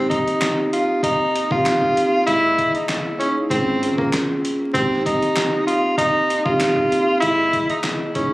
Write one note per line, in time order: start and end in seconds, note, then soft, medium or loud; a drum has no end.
0.00 0.17 G#1 loud
0.00 1.36 A#3 medium
0.00 1.36 C4 medium
0.00 1.36 D#4 medium
0.00 1.37 G4 medium
0.10 0.68 D#4 medium
0.10 kick medium
0.10 closed hi-hat medium
0.28 closed hi-hat soft
0.41 finger snap medium
0.41 snare loud
0.41 clap medium
0.41 closed hi-hat medium
0.73 1.00 F4 medium
0.73 closed hi-hat medium
1.03 1.49 D#4 medium
1.03 kick loud
1.03 closed hi-hat loud
1.35 closed hi-hat medium
1.51 1.62 A#1 medium
1.51 1.92 A#3 medium
1.51 1.93 C4 medium
1.51 1.93 D#4 medium
1.51 2.23 F4 medium
1.51 1.93 G4 loud
1.51 kick loud
1.65 finger snap medium
1.65 snare loud
1.65 clap loud
1.65 closed hi-hat loud
1.81 kick loud
1.94 2.23 A#3 medium
1.94 2.24 C4 medium
1.94 2.24 D#4 medium
1.94 2.25 G4 medium
1.94 closed hi-hat medium
2.25 2.64 G#1 loud
2.25 3.12 A#3 loud
2.25 3.13 E4 medium
2.25 2.73 E4 loud
2.25 3.13 G#4 loud
2.25 3.12 D#5 medium
2.25 closed hi-hat medium
2.58 kick medium
2.58 closed hi-hat medium
2.75 2.87 D#4 medium
2.75 closed hi-hat soft
2.88 finger snap medium
2.88 snare loud
2.88 clap loud
2.88 closed hi-hat medium
3.19 3.48 A#3 medium
3.19 3.35 C#4 medium
3.19 3.50 D#4 medium
3.19 3.51 E4 medium
3.19 3.50 G#4 loud
3.19 closed hi-hat medium
3.49 3.88 G#1 loud
3.49 3.72 A#3 medium
3.49 3.96 C4 loud
3.49 3.72 C#4 medium
3.49 3.72 F4 medium
3.49 3.72 G#4 loud
3.49 kick loud
3.49 closed hi-hat loud
3.83 4.69 A#3 loud
3.83 4.69 C#4 medium
3.83 4.69 F4 medium
3.83 4.69 G#4 loud
3.83 closed hi-hat medium
3.98 4.23 G#1 medium
3.98 4.10 A#3 medium
3.98 kick loud
4.12 finger snap medium
4.12 snare loud
4.12 clap medium
4.12 closed hi-hat loud
4.45 closed hi-hat medium
4.73 5.12 G#1 loud
4.73 6.31 A#3 loud
4.73 5.02 C4 loud
4.73 6.31 C4 medium
4.73 6.31 D#4 medium
4.73 6.32 G4 loud
4.73 kick loud
4.73 closed hi-hat medium
4.93 snare soft
5.06 5.64 D#4 medium
5.06 kick medium
5.06 closed hi-hat medium
5.22 closed hi-hat soft
5.36 finger snap medium
5.36 snare loud
5.36 clap loud
5.36 closed hi-hat medium
5.67 5.95 F4 medium
5.67 closed hi-hat medium
5.98 6.44 D#4 loud
5.98 kick medium
5.98 closed hi-hat loud
6.30 closed hi-hat medium
6.45 6.56 A#1 medium
6.45 6.87 A#3 medium
6.45 6.87 C4 medium
6.45 6.88 D#4 medium
6.45 7.17 F4 medium
6.45 6.88 G4 loud
6.45 kick loud
6.60 finger snap medium
6.60 snare loud
6.60 clap medium
6.60 closed hi-hat loud
6.76 kick loud
6.89 7.18 A#3 medium
6.89 7.19 C4 medium
6.89 7.19 D#4 medium
6.89 7.19 G4 medium
6.89 closed hi-hat medium
7.19 7.59 G#1 loud
7.19 8.07 A#3 loud
7.19 8.07 E4 medium
7.19 7.67 E4 loud
7.19 8.08 G#4 loud
7.19 8.07 D#5 medium
7.19 closed hi-hat medium
7.53 kick loud
7.53 closed hi-hat medium
7.70 7.82 D#4 medium
7.70 closed hi-hat medium
7.83 finger snap medium
7.83 snare loud
7.83 clap medium
7.83 closed hi-hat medium
8.14 8.34 A#3 medium
8.14 8.31 C#4 medium
8.14 8.34 D#4 medium
8.14 8.34 E4 medium
8.14 8.34 G#4 loud
8.14 kick loud
8.14 closed hi-hat medium